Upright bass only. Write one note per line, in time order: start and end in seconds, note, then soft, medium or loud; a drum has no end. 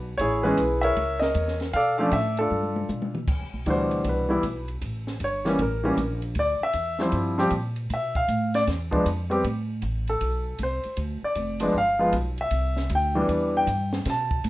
0.00 0.19 B1 medium
0.19 0.57 A1 medium
0.58 0.95 B1 medium
0.96 1.34 C#2 medium
1.35 1.72 E2 medium
1.73 2.11 B2 medium
2.12 2.49 A2 medium
2.51 2.88 G2 medium
2.89 3.27 B2 medium
3.28 3.42 E2 medium
3.41 3.53 C2 medium
3.53 3.65 B1 medium
3.66 4.04 D2 medium
4.05 4.42 C2 medium
4.43 4.81 B1 medium
4.81 5.19 A1 medium
5.20 5.57 G1 medium
5.59 5.96 A1 medium
5.97 6.35 A#1 medium
6.35 6.59 D2 medium
6.61 muted upright bass stroke soft
6.74 7.12 E2 medium
7.13 7.50 G2 medium
7.51 7.89 A#2 medium
7.90 8.27 B2 medium
8.28 8.66 A2 medium
8.67 9.05 E2 medium
9.06 9.43 F2 medium
9.44 9.81 A2 medium
9.83 10.20 A1 medium
10.21 10.58 B1 medium
10.59 10.83 C2 medium
10.85 muted upright bass stroke soft
10.97 11.21 D2 medium
11.23 muted upright bass stroke soft
11.36 11.73 F1 medium
11.74 12.12 G1 medium
12.13 12.50 B1 medium
12.51 12.89 C2 medium
12.90 13.28 D2 loud
13.29 13.66 E2 medium
13.67 14.04 G2 loud
14.06 14.43 B2 medium
14.44 14.49 A2 medium